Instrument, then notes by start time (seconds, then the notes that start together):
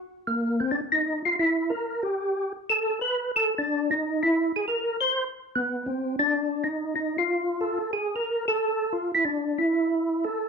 tonewheel organ
0.27 A#3
0.60 C4
0.71 D4
0.92 D#4
1.25 F4
1.39 E4
1.70 A#4
2.03 G4
2.70 A4
3.01 B4
3.36 A4
3.58 D4
3.91 D#4
4.23 E4
4.56 G#4
4.68 A#4
5.01 C5
5.55 B3
5.86 C4
6.19 D4
6.64 D#4
6.96 D#4
7.18 F4
7.61 A4
7.93 G#4
8.15 A#4
8.48 A4
8.93 F4
9.15 E4
9.25 D4
9.58 E4
10.24 A4